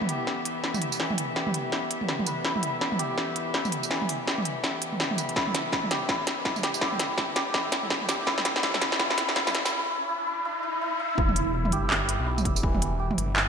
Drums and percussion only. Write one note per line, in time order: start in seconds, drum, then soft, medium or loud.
0.02 mid tom medium
0.09 closed hi-hat medium
0.27 snare soft
0.45 closed hi-hat medium
0.64 snare medium
0.74 mid tom medium
0.74 tambourine soft
0.82 closed hi-hat medium
0.92 tambourine medium
1.00 snare medium
1.10 mid tom medium
1.18 closed hi-hat medium
1.36 snare medium
1.47 mid tom medium
1.54 closed hi-hat medium
1.72 snare medium
1.91 closed hi-hat medium
2.01 mid tom medium
2.09 snare medium
2.19 mid tom medium
2.27 closed hi-hat medium
2.27 tambourine medium
2.45 snare medium
2.56 mid tom medium
2.63 closed hi-hat medium
2.81 snare medium
2.92 mid tom medium
2.99 closed hi-hat medium
3.18 snare medium
3.36 closed hi-hat medium
3.54 snare medium
3.65 mid tom medium
3.65 tambourine soft
3.72 closed hi-hat medium
3.83 tambourine medium
3.91 snare medium
4.02 mid tom medium
4.09 closed hi-hat medium
4.09 tambourine soft
4.28 snare medium
4.38 mid tom medium
4.45 closed hi-hat medium
4.64 snare medium
4.82 closed hi-hat medium
4.92 mid tom soft
5.00 snare medium
5.11 mid tom medium
5.18 closed hi-hat medium
5.18 tambourine medium
5.29 closed hi-hat soft
5.36 kick medium
5.36 snare medium
5.47 mid tom medium
5.55 snare medium
5.55 closed hi-hat medium
5.72 kick loud
5.72 snare medium
5.83 mid tom medium
5.91 snare medium
5.91 closed hi-hat medium
6.09 kick medium
6.09 snare medium
6.27 snare medium
6.27 closed hi-hat medium
6.45 kick loud
6.45 snare medium
6.56 mid tom medium
6.56 tambourine soft
6.63 snare medium
6.63 closed hi-hat medium
6.74 tambourine medium
6.81 kick loud
6.81 snare medium
6.92 mid tom medium
6.99 snare medium
6.99 closed hi-hat medium
7.18 kick loud
7.18 snare medium
7.36 snare medium
7.36 closed hi-hat medium
7.54 kick loud
7.54 snare medium
7.72 snare medium
7.72 closed hi-hat medium
7.83 mid tom medium
7.90 kick loud
7.90 snare medium
8.01 mid tom medium
8.09 snare medium
8.09 closed hi-hat medium
8.09 tambourine medium
8.27 kick medium
8.27 snare medium
8.38 snare medium
8.38 mid tom medium
8.45 snare medium
8.45 closed hi-hat medium
8.56 snare medium
8.63 kick loud
8.63 snare loud
8.74 snare medium
8.74 mid tom medium
8.82 snare medium
8.82 closed hi-hat medium
8.92 snare medium
8.99 kick loud
8.99 snare loud
9.10 snare medium
9.18 snare loud
9.18 closed hi-hat medium
9.29 snare medium
9.36 kick medium
9.36 snare loud
9.47 snare medium
9.47 mid tom medium
9.47 tambourine soft
9.55 snare medium
9.55 closed hi-hat medium
9.65 snare medium
9.65 tambourine medium
11.18 kick loud
11.29 mid tom medium
11.36 closed hi-hat medium
11.65 mid tom medium
11.72 closed hi-hat medium
11.90 clap loud
12.09 closed hi-hat medium
12.38 mid tom medium
12.38 tambourine soft
12.45 kick loud
12.45 closed hi-hat medium
12.56 tambourine medium
12.63 kick loud
12.74 mid tom medium
12.82 closed hi-hat medium
13.11 mid tom medium
13.18 closed hi-hat medium
13.36 clap loud